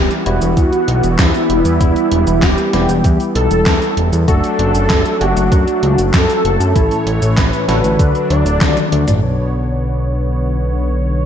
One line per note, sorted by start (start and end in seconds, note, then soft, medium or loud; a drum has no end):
0.00 4.24 E3 medium
0.00 0.22 G3 loud
0.00 4.24 G3 medium
0.00 0.22 B3 medium
0.00 4.24 B3 medium
0.00 0.22 E4 loud
0.00 0.14 G4 loud
0.11 closed hi-hat soft
0.11 cabasa soft
0.26 0.40 E1 medium
0.26 1.77 G3 loud
0.26 1.77 B3 medium
0.26 1.77 E4 loud
0.26 1.20 F#4 loud
0.26 closed hi-hat loud
0.41 0.55 E1 medium
0.41 closed hi-hat soft
0.41 cabasa medium
0.57 0.71 E2 loud
0.57 kick loud
0.57 closed hi-hat medium
0.57 cabasa soft
0.73 closed hi-hat soft
0.73 cabasa soft
0.88 1.02 B1 medium
0.88 closed hi-hat loud
1.03 1.17 E1 medium
1.03 closed hi-hat soft
1.03 cabasa medium
1.19 1.33 E2 loud
1.19 2.44 E4 loud
1.19 kick loud
1.19 snare loud
1.19 clap loud
1.19 closed hi-hat medium
1.19 cabasa medium
1.34 closed hi-hat soft
1.34 cabasa soft
1.49 1.64 E1 loud
1.49 closed hi-hat medium
1.65 1.79 E2 medium
1.65 closed hi-hat soft
1.65 cabasa medium
1.81 1.95 E1 loud
1.81 2.70 G3 loud
1.81 2.70 B3 medium
1.81 2.70 E4 loud
1.81 kick loud
1.81 closed hi-hat medium
1.81 cabasa medium
1.96 closed hi-hat soft
1.96 cabasa soft
2.12 2.25 E1 loud
2.12 closed hi-hat medium
2.27 2.41 E1 medium
2.27 closed hi-hat soft
2.27 cabasa medium
2.42 2.56 E1 loud
2.42 3.23 G4 medium
2.42 kick loud
2.42 snare loud
2.42 clap loud
2.42 closed hi-hat medium
2.42 cabasa soft
2.58 closed hi-hat soft
2.58 cabasa soft
2.73 2.87 E1 loud
2.73 4.24 G3 loud
2.73 4.24 B3 medium
2.73 4.24 E4 loud
2.73 snare medium
2.73 closed hi-hat medium
2.89 3.03 E1 medium
2.89 closed hi-hat soft
2.89 cabasa medium
3.04 3.18 E2 loud
3.04 kick loud
3.04 closed hi-hat medium
3.04 cabasa soft
3.20 closed hi-hat soft
3.20 cabasa soft
3.35 3.49 B1 medium
3.35 4.16 A4 loud
3.35 closed hi-hat medium
3.51 3.65 E1 medium
3.51 closed hi-hat soft
3.51 cabasa medium
3.66 3.80 E2 loud
3.66 kick loud
3.66 snare loud
3.66 clap loud
3.66 closed hi-hat medium
3.66 cabasa medium
3.82 closed hi-hat soft
3.82 cabasa soft
3.97 4.11 E1 medium
3.97 closed hi-hat medium
4.13 4.27 E2 medium
4.13 closed hi-hat soft
4.13 cabasa medium
4.28 4.42 F#1 loud
4.28 6.73 F#3 medium
4.28 5.17 A3 loud
4.28 9.19 A3 medium
4.28 5.17 D4 medium
4.28 6.73 D4 medium
4.28 5.17 F#4 loud
4.28 5.22 A4 loud
4.28 kick loud
4.28 closed hi-hat medium
4.28 cabasa soft
4.44 closed hi-hat soft
4.44 cabasa soft
4.59 4.73 F#1 loud
4.59 closed hi-hat loud
4.74 4.88 F#1 medium
4.74 closed hi-hat soft
4.74 cabasa medium
4.90 5.04 F#1 loud
4.90 kick loud
4.90 snare loud
4.90 clap loud
4.90 closed hi-hat medium
4.90 cabasa medium
5.05 closed hi-hat soft
5.05 cabasa soft
5.21 5.35 F#1 medium
5.21 6.72 A3 loud
5.21 6.72 D4 medium
5.21 6.01 F#4 loud
5.21 6.72 F#4 loud
5.21 closed hi-hat loud
5.36 5.50 F#1 medium
5.36 closed hi-hat soft
5.36 cabasa medium
5.52 5.66 F#2 loud
5.52 kick loud
5.52 closed hi-hat medium
5.52 cabasa medium
5.68 closed hi-hat soft
5.68 cabasa soft
5.83 5.97 C#2 loud
5.83 closed hi-hat loud
5.98 6.12 F#1 medium
5.98 closed hi-hat soft
5.98 cabasa medium
6.14 6.28 F#2 loud
6.14 7.25 A4 loud
6.14 kick loud
6.14 snare loud
6.14 clap loud
6.14 closed hi-hat medium
6.14 cabasa medium
6.30 closed hi-hat soft
6.30 cabasa soft
6.45 6.58 F#1 medium
6.45 closed hi-hat loud
6.60 6.74 F#2 medium
6.60 closed hi-hat soft
6.60 cabasa medium
6.75 6.89 A1 loud
6.75 7.65 A2 loud
6.75 7.98 E3 medium
6.75 7.65 A3 medium
6.75 7.65 C#4 medium
6.75 7.65 E4 loud
6.75 7.98 C#5 medium
6.75 kick loud
6.75 closed hi-hat medium
6.75 cabasa medium
6.91 closed hi-hat soft
6.91 cabasa soft
7.06 7.20 A1 medium
7.06 closed hi-hat loud
7.22 7.36 A1 medium
7.22 closed hi-hat soft
7.22 cabasa medium
7.37 7.51 A1 loud
7.37 8.32 B4 medium
7.37 kick loud
7.37 snare loud
7.37 clap loud
7.37 closed hi-hat medium
7.37 cabasa soft
7.53 closed hi-hat soft
7.53 cabasa soft
7.68 7.82 A1 medium
7.68 9.19 D3 loud
7.68 9.19 D4 loud
7.68 9.19 F#4 medium
7.68 9.19 A4 loud
7.68 snare medium
7.68 closed hi-hat loud
7.84 7.98 A1 medium
7.84 closed hi-hat soft
7.84 cabasa medium
7.99 8.13 D2 loud
7.99 9.22 F#3 medium
7.99 9.22 D4 medium
7.99 kick loud
7.99 closed hi-hat medium
7.99 cabasa soft
8.15 closed hi-hat soft
8.15 cabasa soft
8.30 8.44 D2 loud
8.30 9.11 D5 loud
8.30 closed hi-hat loud
8.46 8.59 D1 medium
8.46 closed hi-hat soft
8.46 cabasa medium
8.61 8.75 D2 loud
8.61 kick loud
8.61 snare loud
8.61 clap loud
8.61 closed hi-hat medium
8.61 high tom medium
8.61 cabasa medium
8.77 closed hi-hat soft
8.77 high tom medium
8.77 cabasa soft
8.92 9.06 D2 loud
8.92 closed hi-hat loud
9.08 9.21 A1 medium
9.08 closed hi-hat soft
9.08 mid tom medium
9.08 cabasa medium
9.23 11.26 B1 medium
9.23 11.26 B2 medium
9.23 11.26 D3 medium
9.23 11.26 B3 medium
9.23 11.26 D4 medium
9.23 11.26 B4 medium
9.23 11.26 C#5 medium
9.23 crash medium